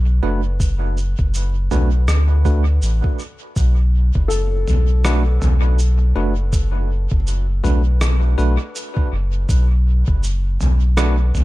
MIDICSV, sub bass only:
0, 0, Header, 1, 2, 480
1, 0, Start_track
1, 0, Key_signature, 2, "minor"
1, 0, Tempo, 740741
1, 391, Time_signature, 4, 2, 24, 8
1, 7414, End_track
2, 0, Start_track
2, 0, Title_t, "Sub bass"
2, 0, Program_c, 0, 38
2, 0, Note_on_c, 0, 35, 101
2, 131, Note_off_c, 0, 35, 0
2, 147, Note_on_c, 0, 30, 81
2, 743, Note_off_c, 0, 30, 0
2, 770, Note_on_c, 0, 30, 88
2, 1091, Note_off_c, 0, 30, 0
2, 1108, Note_on_c, 0, 35, 82
2, 1345, Note_off_c, 0, 35, 0
2, 1348, Note_on_c, 0, 38, 81
2, 1811, Note_off_c, 0, 38, 0
2, 1826, Note_on_c, 0, 33, 96
2, 1953, Note_off_c, 0, 33, 0
2, 2308, Note_on_c, 0, 35, 100
2, 2664, Note_off_c, 0, 35, 0
2, 2691, Note_on_c, 0, 30, 88
2, 3012, Note_off_c, 0, 30, 0
2, 3029, Note_on_c, 0, 35, 81
2, 3491, Note_off_c, 0, 35, 0
2, 3510, Note_on_c, 0, 35, 99
2, 3972, Note_off_c, 0, 35, 0
2, 3988, Note_on_c, 0, 30, 82
2, 4584, Note_off_c, 0, 30, 0
2, 4610, Note_on_c, 0, 30, 84
2, 4931, Note_off_c, 0, 30, 0
2, 4950, Note_on_c, 0, 35, 83
2, 5411, Note_off_c, 0, 35, 0
2, 5431, Note_on_c, 0, 35, 86
2, 5555, Note_off_c, 0, 35, 0
2, 5909, Note_on_c, 0, 30, 83
2, 6126, Note_off_c, 0, 30, 0
2, 6149, Note_on_c, 0, 35, 96
2, 6504, Note_off_c, 0, 35, 0
2, 6531, Note_on_c, 0, 30, 85
2, 6851, Note_off_c, 0, 30, 0
2, 6871, Note_on_c, 0, 35, 85
2, 7332, Note_off_c, 0, 35, 0
2, 7350, Note_on_c, 0, 35, 98
2, 7414, Note_off_c, 0, 35, 0
2, 7414, End_track
0, 0, End_of_file